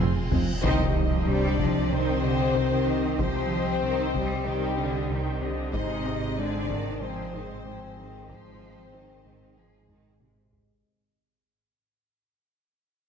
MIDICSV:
0, 0, Header, 1, 14, 480
1, 0, Start_track
1, 0, Key_signature, -3, "minor"
1, 0, Tempo, 638298
1, 480, Time_signature, 4, 2, 24, 8
1, 9839, End_track
2, 0, Start_track
2, 0, Title_t, "Violin section"
2, 0, Program_c, 0, 48
2, 0, Note_on_c, 0, 84, 102
2, 237, Note_off_c, 0, 84, 0
2, 477, Note_on_c, 0, 79, 105
2, 702, Note_off_c, 0, 79, 0
2, 715, Note_on_c, 0, 75, 80
2, 958, Note_off_c, 0, 75, 0
2, 962, Note_on_c, 0, 79, 76
2, 1201, Note_off_c, 0, 79, 0
2, 1203, Note_on_c, 0, 75, 77
2, 1442, Note_off_c, 0, 75, 0
2, 1442, Note_on_c, 0, 79, 81
2, 1664, Note_off_c, 0, 79, 0
2, 1679, Note_on_c, 0, 75, 74
2, 1918, Note_on_c, 0, 79, 82
2, 1919, Note_off_c, 0, 75, 0
2, 2159, Note_off_c, 0, 79, 0
2, 2159, Note_on_c, 0, 75, 77
2, 2399, Note_off_c, 0, 75, 0
2, 2402, Note_on_c, 0, 79, 82
2, 2624, Note_off_c, 0, 79, 0
2, 2642, Note_on_c, 0, 75, 79
2, 2881, Note_off_c, 0, 75, 0
2, 2882, Note_on_c, 0, 79, 87
2, 3117, Note_on_c, 0, 75, 87
2, 3121, Note_off_c, 0, 79, 0
2, 3358, Note_off_c, 0, 75, 0
2, 3364, Note_on_c, 0, 79, 93
2, 3585, Note_off_c, 0, 79, 0
2, 3602, Note_on_c, 0, 75, 90
2, 3837, Note_on_c, 0, 79, 100
2, 3841, Note_off_c, 0, 75, 0
2, 4073, Note_on_c, 0, 75, 95
2, 4078, Note_off_c, 0, 79, 0
2, 4316, Note_off_c, 0, 75, 0
2, 4319, Note_on_c, 0, 80, 88
2, 4543, Note_off_c, 0, 80, 0
2, 4556, Note_on_c, 0, 75, 91
2, 4798, Note_off_c, 0, 75, 0
2, 4798, Note_on_c, 0, 80, 97
2, 5039, Note_off_c, 0, 80, 0
2, 5039, Note_on_c, 0, 75, 89
2, 5279, Note_off_c, 0, 75, 0
2, 5279, Note_on_c, 0, 80, 94
2, 5503, Note_off_c, 0, 80, 0
2, 5514, Note_on_c, 0, 75, 85
2, 5757, Note_off_c, 0, 75, 0
2, 5765, Note_on_c, 0, 80, 98
2, 6001, Note_on_c, 0, 75, 88
2, 6002, Note_off_c, 0, 80, 0
2, 6232, Note_on_c, 0, 80, 82
2, 6240, Note_off_c, 0, 75, 0
2, 6459, Note_off_c, 0, 80, 0
2, 6468, Note_on_c, 0, 75, 83
2, 6714, Note_off_c, 0, 75, 0
2, 6716, Note_on_c, 0, 80, 84
2, 6952, Note_on_c, 0, 75, 81
2, 6958, Note_off_c, 0, 80, 0
2, 7196, Note_off_c, 0, 75, 0
2, 7199, Note_on_c, 0, 80, 75
2, 7423, Note_off_c, 0, 80, 0
2, 7430, Note_on_c, 0, 75, 75
2, 7675, Note_off_c, 0, 75, 0
2, 7679, Note_on_c, 0, 80, 77
2, 7909, Note_on_c, 0, 75, 76
2, 7919, Note_off_c, 0, 80, 0
2, 8154, Note_off_c, 0, 75, 0
2, 9839, End_track
3, 0, Start_track
3, 0, Title_t, "Violin section"
3, 0, Program_c, 1, 48
3, 0, Note_on_c, 1, 68, 119
3, 0, Note_on_c, 1, 80, 123
3, 295, Note_off_c, 1, 80, 0
3, 324, Note_off_c, 1, 68, 0
3, 474, Note_on_c, 1, 75, 125
3, 927, Note_off_c, 1, 75, 0
3, 956, Note_on_c, 1, 74, 111
3, 1428, Note_off_c, 1, 74, 0
3, 1437, Note_on_c, 1, 72, 127
3, 2386, Note_off_c, 1, 72, 0
3, 2395, Note_on_c, 1, 72, 127
3, 3338, Note_off_c, 1, 72, 0
3, 3355, Note_on_c, 1, 67, 113
3, 4063, Note_off_c, 1, 67, 0
3, 4314, Note_on_c, 1, 75, 127
3, 4767, Note_off_c, 1, 75, 0
3, 4791, Note_on_c, 1, 74, 127
3, 5265, Note_on_c, 1, 72, 127
3, 5275, Note_off_c, 1, 74, 0
3, 6213, Note_off_c, 1, 72, 0
3, 6232, Note_on_c, 1, 72, 127
3, 7177, Note_off_c, 1, 72, 0
3, 7196, Note_on_c, 1, 68, 103
3, 7918, Note_off_c, 1, 68, 0
3, 9839, End_track
4, 0, Start_track
4, 0, Title_t, "Viola section"
4, 0, Program_c, 2, 48
4, 0, Note_on_c, 2, 60, 81
4, 0, Note_on_c, 2, 65, 78
4, 221, Note_off_c, 2, 60, 0
4, 221, Note_off_c, 2, 65, 0
4, 237, Note_on_c, 2, 60, 69
4, 239, Note_on_c, 2, 63, 73
4, 297, Note_off_c, 2, 60, 0
4, 299, Note_off_c, 2, 63, 0
4, 482, Note_on_c, 2, 63, 104
4, 482, Note_on_c, 2, 72, 110
4, 704, Note_off_c, 2, 63, 0
4, 704, Note_off_c, 2, 72, 0
4, 717, Note_on_c, 2, 67, 77
4, 717, Note_on_c, 2, 75, 72
4, 958, Note_off_c, 2, 67, 0
4, 959, Note_off_c, 2, 75, 0
4, 961, Note_on_c, 2, 72, 77
4, 962, Note_on_c, 2, 63, 82
4, 1194, Note_off_c, 2, 63, 0
4, 1201, Note_off_c, 2, 72, 0
4, 1203, Note_on_c, 2, 63, 83
4, 1204, Note_on_c, 2, 67, 78
4, 1434, Note_off_c, 2, 63, 0
4, 1442, Note_off_c, 2, 67, 0
4, 1443, Note_on_c, 2, 63, 94
4, 1448, Note_on_c, 2, 72, 83
4, 1665, Note_off_c, 2, 63, 0
4, 1667, Note_off_c, 2, 72, 0
4, 1681, Note_on_c, 2, 75, 79
4, 1685, Note_on_c, 2, 67, 81
4, 1920, Note_off_c, 2, 75, 0
4, 1922, Note_off_c, 2, 67, 0
4, 1925, Note_on_c, 2, 63, 83
4, 1926, Note_on_c, 2, 72, 79
4, 2162, Note_off_c, 2, 63, 0
4, 2163, Note_off_c, 2, 72, 0
4, 2166, Note_on_c, 2, 67, 81
4, 2170, Note_on_c, 2, 75, 76
4, 2399, Note_on_c, 2, 63, 96
4, 2400, Note_on_c, 2, 72, 90
4, 2403, Note_off_c, 2, 67, 0
4, 2405, Note_off_c, 2, 75, 0
4, 2623, Note_off_c, 2, 63, 0
4, 2623, Note_off_c, 2, 72, 0
4, 2640, Note_on_c, 2, 75, 80
4, 2643, Note_on_c, 2, 67, 84
4, 2880, Note_off_c, 2, 75, 0
4, 2881, Note_off_c, 2, 67, 0
4, 2882, Note_on_c, 2, 63, 93
4, 2885, Note_on_c, 2, 72, 89
4, 3117, Note_on_c, 2, 67, 97
4, 3117, Note_on_c, 2, 75, 89
4, 3121, Note_off_c, 2, 63, 0
4, 3122, Note_off_c, 2, 72, 0
4, 3358, Note_off_c, 2, 67, 0
4, 3358, Note_off_c, 2, 75, 0
4, 3358, Note_on_c, 2, 72, 93
4, 3359, Note_on_c, 2, 63, 93
4, 3582, Note_off_c, 2, 72, 0
4, 3583, Note_off_c, 2, 63, 0
4, 3594, Note_on_c, 2, 67, 89
4, 3595, Note_on_c, 2, 75, 83
4, 3837, Note_off_c, 2, 67, 0
4, 3837, Note_off_c, 2, 75, 0
4, 3838, Note_on_c, 2, 63, 84
4, 3840, Note_on_c, 2, 72, 86
4, 4079, Note_off_c, 2, 63, 0
4, 4079, Note_on_c, 2, 67, 96
4, 4080, Note_off_c, 2, 72, 0
4, 4080, Note_on_c, 2, 75, 93
4, 4319, Note_off_c, 2, 67, 0
4, 4320, Note_off_c, 2, 75, 0
4, 4321, Note_on_c, 2, 63, 99
4, 4321, Note_on_c, 2, 72, 99
4, 4543, Note_off_c, 2, 63, 0
4, 4544, Note_off_c, 2, 72, 0
4, 4561, Note_on_c, 2, 68, 94
4, 4561, Note_on_c, 2, 75, 87
4, 4800, Note_off_c, 2, 68, 0
4, 4800, Note_off_c, 2, 75, 0
4, 4802, Note_on_c, 2, 60, 100
4, 4805, Note_on_c, 2, 72, 100
4, 5041, Note_off_c, 2, 60, 0
4, 5041, Note_on_c, 2, 68, 91
4, 5042, Note_off_c, 2, 72, 0
4, 5042, Note_on_c, 2, 63, 97
4, 5271, Note_off_c, 2, 63, 0
4, 5279, Note_on_c, 2, 72, 101
4, 5280, Note_off_c, 2, 68, 0
4, 5280, Note_on_c, 2, 63, 102
4, 5503, Note_off_c, 2, 63, 0
4, 5503, Note_off_c, 2, 72, 0
4, 5520, Note_on_c, 2, 68, 93
4, 5522, Note_on_c, 2, 75, 89
4, 5755, Note_on_c, 2, 72, 78
4, 5756, Note_on_c, 2, 63, 87
4, 5760, Note_off_c, 2, 68, 0
4, 5761, Note_off_c, 2, 75, 0
4, 5991, Note_on_c, 2, 75, 88
4, 5992, Note_on_c, 2, 68, 87
4, 5997, Note_off_c, 2, 72, 0
4, 5998, Note_off_c, 2, 63, 0
4, 6232, Note_on_c, 2, 72, 89
4, 6233, Note_on_c, 2, 63, 93
4, 6236, Note_off_c, 2, 68, 0
4, 6236, Note_off_c, 2, 75, 0
4, 6459, Note_off_c, 2, 63, 0
4, 6459, Note_off_c, 2, 72, 0
4, 6471, Note_on_c, 2, 75, 86
4, 6475, Note_on_c, 2, 68, 79
4, 6713, Note_on_c, 2, 63, 93
4, 6714, Note_on_c, 2, 72, 88
4, 6715, Note_off_c, 2, 75, 0
4, 6717, Note_off_c, 2, 68, 0
4, 6955, Note_on_c, 2, 75, 81
4, 6956, Note_off_c, 2, 63, 0
4, 6956, Note_on_c, 2, 68, 89
4, 6957, Note_off_c, 2, 72, 0
4, 7194, Note_on_c, 2, 63, 89
4, 7194, Note_on_c, 2, 72, 85
4, 7198, Note_off_c, 2, 68, 0
4, 7198, Note_off_c, 2, 75, 0
4, 7420, Note_off_c, 2, 63, 0
4, 7420, Note_off_c, 2, 72, 0
4, 7429, Note_on_c, 2, 68, 75
4, 7430, Note_on_c, 2, 75, 75
4, 7670, Note_on_c, 2, 72, 70
4, 7671, Note_on_c, 2, 63, 78
4, 7675, Note_off_c, 2, 68, 0
4, 7675, Note_off_c, 2, 75, 0
4, 7914, Note_on_c, 2, 68, 74
4, 7914, Note_on_c, 2, 75, 73
4, 7915, Note_off_c, 2, 72, 0
4, 7916, Note_off_c, 2, 63, 0
4, 8157, Note_off_c, 2, 68, 0
4, 8157, Note_off_c, 2, 75, 0
4, 9839, End_track
5, 0, Start_track
5, 0, Title_t, "Analog synth pad"
5, 0, Program_c, 3, 89
5, 0, Note_on_c, 3, 53, 92
5, 0, Note_on_c, 3, 60, 106
5, 0, Note_on_c, 3, 65, 89
5, 0, Note_on_c, 3, 68, 96
5, 467, Note_off_c, 3, 60, 0
5, 472, Note_on_c, 3, 67, 117
5, 473, Note_on_c, 3, 48, 118
5, 476, Note_on_c, 3, 60, 121
5, 476, Note_on_c, 3, 72, 119
5, 480, Note_off_c, 3, 65, 0
5, 480, Note_off_c, 3, 68, 0
5, 482, Note_off_c, 3, 53, 0
5, 4286, Note_off_c, 3, 48, 0
5, 4286, Note_off_c, 3, 67, 0
5, 4288, Note_off_c, 3, 60, 0
5, 4288, Note_off_c, 3, 72, 0
5, 4321, Note_on_c, 3, 60, 108
5, 4322, Note_on_c, 3, 68, 105
5, 4323, Note_on_c, 3, 72, 100
5, 4327, Note_on_c, 3, 48, 99
5, 8131, Note_off_c, 3, 60, 0
5, 8131, Note_off_c, 3, 72, 0
5, 8133, Note_off_c, 3, 48, 0
5, 8161, Note_off_c, 3, 68, 0
5, 9839, End_track
6, 0, Start_track
6, 0, Title_t, "French horn section"
6, 0, Program_c, 4, 60
6, 0, Note_on_c, 4, 56, 96
6, 0, Note_on_c, 4, 65, 103
6, 206, Note_off_c, 4, 56, 0
6, 238, Note_off_c, 4, 65, 0
6, 477, Note_on_c, 4, 63, 117
6, 928, Note_off_c, 4, 63, 0
6, 953, Note_on_c, 4, 62, 117
6, 1432, Note_on_c, 4, 60, 115
6, 1436, Note_off_c, 4, 62, 0
6, 2383, Note_off_c, 4, 60, 0
6, 2392, Note_on_c, 4, 60, 127
6, 3337, Note_off_c, 4, 60, 0
6, 3356, Note_on_c, 4, 55, 127
6, 4064, Note_off_c, 4, 55, 0
6, 4317, Note_on_c, 4, 63, 127
6, 4768, Note_off_c, 4, 63, 0
6, 4797, Note_on_c, 4, 62, 127
6, 5277, Note_on_c, 4, 60, 127
6, 5279, Note_off_c, 4, 62, 0
6, 6229, Note_off_c, 4, 60, 0
6, 6238, Note_on_c, 4, 60, 127
6, 7180, Note_off_c, 4, 60, 0
6, 7194, Note_on_c, 4, 56, 117
6, 7917, Note_off_c, 4, 56, 0
6, 9839, End_track
7, 0, Start_track
7, 0, Title_t, "Synth arpeggio sound"
7, 0, Program_c, 5, 84
7, 0, Note_on_c, 5, 53, 120
7, 141, Note_off_c, 5, 53, 0
7, 237, Note_on_c, 5, 60, 87
7, 382, Note_off_c, 5, 60, 0
7, 479, Note_on_c, 5, 48, 127
7, 623, Note_off_c, 5, 48, 0
7, 720, Note_on_c, 5, 51, 80
7, 864, Note_off_c, 5, 51, 0
7, 959, Note_on_c, 5, 55, 84
7, 1103, Note_off_c, 5, 55, 0
7, 1198, Note_on_c, 5, 48, 111
7, 1343, Note_off_c, 5, 48, 0
7, 1679, Note_on_c, 5, 55, 84
7, 1823, Note_off_c, 5, 55, 0
7, 1918, Note_on_c, 5, 48, 127
7, 2062, Note_off_c, 5, 48, 0
7, 2157, Note_on_c, 5, 60, 92
7, 2302, Note_off_c, 5, 60, 0
7, 2398, Note_on_c, 5, 48, 123
7, 2543, Note_off_c, 5, 48, 0
7, 2639, Note_on_c, 5, 51, 82
7, 2783, Note_off_c, 5, 51, 0
7, 2879, Note_on_c, 5, 55, 95
7, 3023, Note_off_c, 5, 55, 0
7, 3115, Note_on_c, 5, 48, 119
7, 3261, Note_off_c, 5, 48, 0
7, 3594, Note_on_c, 5, 55, 84
7, 3740, Note_off_c, 5, 55, 0
7, 3833, Note_on_c, 5, 48, 116
7, 3979, Note_off_c, 5, 48, 0
7, 4074, Note_on_c, 5, 60, 90
7, 4220, Note_off_c, 5, 60, 0
7, 4311, Note_on_c, 5, 56, 127
7, 4458, Note_off_c, 5, 56, 0
7, 4552, Note_on_c, 5, 60, 87
7, 4699, Note_off_c, 5, 60, 0
7, 4796, Note_on_c, 5, 60, 88
7, 4941, Note_off_c, 5, 60, 0
7, 5033, Note_on_c, 5, 56, 119
7, 5179, Note_off_c, 5, 56, 0
7, 5515, Note_on_c, 5, 63, 95
7, 5660, Note_off_c, 5, 63, 0
7, 5757, Note_on_c, 5, 56, 124
7, 5902, Note_off_c, 5, 56, 0
7, 5994, Note_on_c, 5, 68, 88
7, 6140, Note_off_c, 5, 68, 0
7, 6234, Note_on_c, 5, 56, 127
7, 6380, Note_off_c, 5, 56, 0
7, 6479, Note_on_c, 5, 60, 90
7, 6623, Note_off_c, 5, 60, 0
7, 6719, Note_on_c, 5, 63, 100
7, 6864, Note_off_c, 5, 63, 0
7, 6959, Note_on_c, 5, 56, 113
7, 7103, Note_off_c, 5, 56, 0
7, 7437, Note_on_c, 5, 63, 84
7, 7582, Note_off_c, 5, 63, 0
7, 7676, Note_on_c, 5, 56, 124
7, 7821, Note_off_c, 5, 56, 0
7, 7916, Note_on_c, 5, 68, 87
7, 8061, Note_off_c, 5, 68, 0
7, 9839, End_track
8, 0, Start_track
8, 0, Title_t, "Cello section"
8, 0, Program_c, 6, 48
8, 245, Note_on_c, 6, 41, 57
8, 305, Note_off_c, 6, 41, 0
8, 483, Note_on_c, 6, 51, 115
8, 705, Note_off_c, 6, 51, 0
8, 723, Note_on_c, 6, 53, 93
8, 961, Note_off_c, 6, 53, 0
8, 962, Note_on_c, 6, 55, 110
8, 1201, Note_off_c, 6, 55, 0
8, 1202, Note_on_c, 6, 53, 88
8, 1436, Note_off_c, 6, 53, 0
8, 1439, Note_on_c, 6, 51, 97
8, 1679, Note_off_c, 6, 51, 0
8, 1685, Note_on_c, 6, 50, 96
8, 1922, Note_off_c, 6, 50, 0
8, 1923, Note_on_c, 6, 51, 101
8, 2402, Note_off_c, 6, 51, 0
8, 2405, Note_on_c, 6, 53, 113
8, 2882, Note_off_c, 6, 53, 0
8, 2884, Note_on_c, 6, 51, 105
8, 3117, Note_off_c, 6, 51, 0
8, 3126, Note_on_c, 6, 55, 102
8, 3358, Note_off_c, 6, 55, 0
8, 3365, Note_on_c, 6, 51, 113
8, 3600, Note_on_c, 6, 50, 109
8, 3602, Note_off_c, 6, 51, 0
8, 3835, Note_off_c, 6, 50, 0
8, 3839, Note_on_c, 6, 51, 106
8, 4077, Note_on_c, 6, 50, 101
8, 4079, Note_off_c, 6, 51, 0
8, 4317, Note_on_c, 6, 48, 114
8, 4319, Note_off_c, 6, 50, 0
8, 4796, Note_on_c, 6, 50, 113
8, 4798, Note_off_c, 6, 48, 0
8, 5036, Note_on_c, 6, 51, 115
8, 5038, Note_off_c, 6, 50, 0
8, 5278, Note_off_c, 6, 51, 0
8, 5280, Note_on_c, 6, 53, 119
8, 5518, Note_on_c, 6, 51, 106
8, 5520, Note_off_c, 6, 53, 0
8, 5759, Note_off_c, 6, 51, 0
8, 5761, Note_on_c, 6, 53, 101
8, 5996, Note_off_c, 6, 53, 0
8, 6003, Note_on_c, 6, 51, 106
8, 6242, Note_off_c, 6, 51, 0
8, 6243, Note_on_c, 6, 53, 127
8, 6722, Note_off_c, 6, 53, 0
8, 6722, Note_on_c, 6, 51, 108
8, 7201, Note_off_c, 6, 51, 0
8, 7201, Note_on_c, 6, 53, 105
8, 7440, Note_off_c, 6, 53, 0
8, 7441, Note_on_c, 6, 51, 98
8, 7676, Note_off_c, 6, 51, 0
8, 7676, Note_on_c, 6, 48, 76
8, 7913, Note_off_c, 6, 48, 0
8, 9839, End_track
9, 0, Start_track
9, 0, Title_t, "Analog synth bass"
9, 0, Program_c, 7, 38
9, 0, Note_on_c, 7, 41, 119
9, 142, Note_off_c, 7, 41, 0
9, 241, Note_on_c, 7, 53, 82
9, 385, Note_off_c, 7, 53, 0
9, 481, Note_on_c, 7, 36, 112
9, 625, Note_off_c, 7, 36, 0
9, 718, Note_on_c, 7, 36, 92
9, 862, Note_off_c, 7, 36, 0
9, 957, Note_on_c, 7, 48, 79
9, 1102, Note_off_c, 7, 48, 0
9, 1199, Note_on_c, 7, 36, 125
9, 1343, Note_off_c, 7, 36, 0
9, 1439, Note_on_c, 7, 48, 83
9, 1583, Note_off_c, 7, 48, 0
9, 1679, Note_on_c, 7, 48, 86
9, 1823, Note_off_c, 7, 48, 0
9, 1917, Note_on_c, 7, 36, 117
9, 2062, Note_off_c, 7, 36, 0
9, 2160, Note_on_c, 7, 36, 88
9, 2304, Note_off_c, 7, 36, 0
9, 2398, Note_on_c, 7, 36, 117
9, 2542, Note_off_c, 7, 36, 0
9, 2638, Note_on_c, 7, 36, 86
9, 2782, Note_off_c, 7, 36, 0
9, 2877, Note_on_c, 7, 48, 88
9, 3022, Note_off_c, 7, 48, 0
9, 3121, Note_on_c, 7, 36, 107
9, 3265, Note_off_c, 7, 36, 0
9, 3360, Note_on_c, 7, 48, 82
9, 3504, Note_off_c, 7, 48, 0
9, 3600, Note_on_c, 7, 48, 80
9, 3744, Note_off_c, 7, 48, 0
9, 3836, Note_on_c, 7, 36, 127
9, 3981, Note_off_c, 7, 36, 0
9, 4079, Note_on_c, 7, 36, 99
9, 4223, Note_off_c, 7, 36, 0
9, 4316, Note_on_c, 7, 44, 125
9, 4461, Note_off_c, 7, 44, 0
9, 4559, Note_on_c, 7, 44, 93
9, 4703, Note_off_c, 7, 44, 0
9, 4796, Note_on_c, 7, 56, 96
9, 4941, Note_off_c, 7, 56, 0
9, 5035, Note_on_c, 7, 44, 110
9, 5181, Note_off_c, 7, 44, 0
9, 5275, Note_on_c, 7, 56, 83
9, 5421, Note_off_c, 7, 56, 0
9, 5517, Note_on_c, 7, 56, 88
9, 5662, Note_off_c, 7, 56, 0
9, 5755, Note_on_c, 7, 44, 127
9, 5900, Note_off_c, 7, 44, 0
9, 5993, Note_on_c, 7, 44, 81
9, 6139, Note_off_c, 7, 44, 0
9, 6232, Note_on_c, 7, 44, 108
9, 6378, Note_off_c, 7, 44, 0
9, 6476, Note_on_c, 7, 44, 93
9, 6621, Note_off_c, 7, 44, 0
9, 6714, Note_on_c, 7, 56, 91
9, 6860, Note_off_c, 7, 56, 0
9, 6953, Note_on_c, 7, 44, 118
9, 7099, Note_off_c, 7, 44, 0
9, 7193, Note_on_c, 7, 56, 82
9, 7339, Note_off_c, 7, 56, 0
9, 7433, Note_on_c, 7, 56, 84
9, 7579, Note_off_c, 7, 56, 0
9, 7672, Note_on_c, 7, 44, 127
9, 7818, Note_off_c, 7, 44, 0
9, 7911, Note_on_c, 7, 44, 84
9, 8058, Note_off_c, 7, 44, 0
9, 9839, End_track
10, 0, Start_track
10, 0, Title_t, "Sub bass"
10, 0, Program_c, 8, 38
10, 0, Note_on_c, 8, 29, 104
10, 478, Note_off_c, 8, 29, 0
10, 482, Note_on_c, 8, 36, 99
10, 4318, Note_on_c, 8, 32, 101
10, 4329, Note_off_c, 8, 36, 0
10, 8159, Note_off_c, 8, 32, 0
10, 9839, End_track
11, 0, Start_track
11, 0, Title_t, "Double bass section"
11, 0, Program_c, 10, 48
11, 3, Note_on_c, 10, 29, 94
11, 63, Note_off_c, 10, 29, 0
11, 245, Note_on_c, 10, 29, 64
11, 305, Note_off_c, 10, 29, 0
11, 484, Note_on_c, 10, 36, 93
11, 4292, Note_off_c, 10, 36, 0
11, 4318, Note_on_c, 10, 32, 102
11, 7978, Note_off_c, 10, 32, 0
11, 9839, End_track
12, 0, Start_track
12, 0, Title_t, "Impact"
12, 0, Program_c, 11, 103
12, 480, Note_on_c, 11, 60, 97
12, 2400, Note_off_c, 11, 60, 0
12, 9839, End_track
13, 0, Start_track
13, 0, Title_t, "Reverse cymbal"
13, 0, Program_c, 12, 119
13, 0, Note_on_c, 12, 60, 61
13, 479, Note_off_c, 12, 60, 0
13, 9839, End_track
14, 0, Start_track
14, 0, Title_t, "Taiko and cinematic ensemble drums"
14, 0, Note_on_c, 9, 47, 89
14, 72, Note_off_c, 9, 47, 0
14, 239, Note_on_c, 9, 43, 95
14, 314, Note_off_c, 9, 43, 0
14, 478, Note_on_c, 9, 41, 103
14, 553, Note_off_c, 9, 41, 0
14, 1199, Note_on_c, 9, 41, 89
14, 1274, Note_off_c, 9, 41, 0
14, 2399, Note_on_c, 9, 41, 106
14, 2474, Note_off_c, 9, 41, 0
14, 3120, Note_on_c, 9, 41, 87
14, 3195, Note_off_c, 9, 41, 0
14, 4317, Note_on_c, 9, 41, 112
14, 4392, Note_off_c, 9, 41, 0
14, 4559, Note_on_c, 9, 37, 50
14, 4634, Note_off_c, 9, 37, 0
14, 5036, Note_on_c, 9, 41, 97
14, 5111, Note_off_c, 9, 41, 0
14, 5517, Note_on_c, 9, 37, 47
14, 5593, Note_off_c, 9, 37, 0
14, 6236, Note_on_c, 9, 41, 112
14, 6311, Note_off_c, 9, 41, 0
14, 6956, Note_on_c, 9, 41, 96
14, 7031, Note_off_c, 9, 41, 0
14, 7436, Note_on_c, 9, 45, 92
14, 7511, Note_off_c, 9, 45, 0
14, 7674, Note_on_c, 9, 47, 89
14, 7750, Note_off_c, 9, 47, 0
14, 7920, Note_on_c, 9, 43, 96
14, 7995, Note_off_c, 9, 43, 0
14, 9839, End_track
0, 0, End_of_file